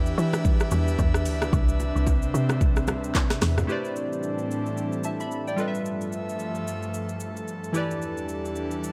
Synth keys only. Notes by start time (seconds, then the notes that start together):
3.67 A3 E4 G4 B4 C5
3.72 D5
5.05 E5 A5
5.20 E5 B5
5.47 D5 G5
5.56 G3 F4 A4 B4
5.61 D#5
5.68 E5
7.73 E3 E4 G4 B4
7.78 D5